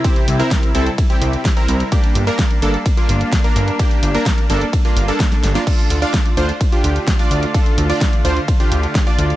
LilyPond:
<<
  \new Staff \with { instrumentName = "Supersaw synth" } { \time 4/4 \key d \minor \tempo 4 = 128 <c' e' g'>8. <c' e' bes'>8. <c' e' a'>16 r8 <c' e' g'>4 <c' e' bes'>8. | <bes d' g'>8. <bes d' bes'>8. <bes d' a'>16 r8 <bes d' f'>4 <bes d' bes'>8. | <bes d' g'>8. <bes d' bes'>8. <bes d' a'>16 r8 <bes d' f'>8 <bes d' a'>4 <bes d' f'>16 | <d' f' a'>8. <d' f' d''>8. <d' f' c''>16 r8 <d' f' g'>4 <d' f' d''>8. |
<d' f' a'>8. <d' f' d''>8. <d' f' c''>16 r8 <d' f' g'>4 <d' f' d''>8. | }
  \new Staff \with { instrumentName = "String section" } { \time 4/4 \key d \minor <c g e'>1 | <bes d'>1~ | <bes d'>1 | <d a f'>1~ |
<d a f'>1 | }
  \new Staff \with { instrumentName = "Analog synth bass" } { \clef bass \time 4/4 \key d \minor r8 c,8 r8 c,8 r8 c,8 r8 c,8 | r8 g,,8 r8 g,,8 r8 g,,8 r8 g,,8 | r8 g,,8 r8 g,,8 r8 g,,8 r8 g,,8 | r8 d,8 r8 d,8 r8 d,8 r8 d,8 |
r8 d,8 r8 d,8 r8 d,8 r8 d,8 | }
  \new DrumStaff \with { instrumentName = "Drums" } \drummode { \time 4/4 <hh bd cymr>16 hh16 hho16 hh16 <hh bd cymr sn>16 hh16 hho16 hh16 <hh bd cymr>16 hh16 hho16 hh16 <hh bd cymr sn>16 hh16 hho16 hh16 | <hh bd cymr>16 hh16 hho16 hh16 <hh bd cymr sn>16 hh16 hho16 hh16 <hh bd cymr>16 hh16 hho16 hh16 <hh bd cymr sn>16 hh16 hho16 hh16 | <hh bd cymr>16 hh16 hho16 hh16 <hh bd cymr sn>16 hh16 <hho sn>16 hh16 <hh bd cymr>16 hh16 hho16 hh16 <hh bd cymr sn>16 <hh sn>16 <hho sn>16 <hh sn>16 | <cymc hh bd cymr>16 hh16 hho16 hh16 <hh bd cymr sn>16 hh16 hho16 hh16 <hh bd cymr>16 hh16 hho16 hh16 <hh bd cymr sn>16 hh16 hho16 hh16 |
<hh bd cymr>16 hh16 hho16 hh16 <hh bd cymr sn>16 hh16 hho16 hh16 <hh bd cymr>16 hh16 hho16 hh16 <hh bd cymr sn>16 hh16 hho16 hh16 | }
>>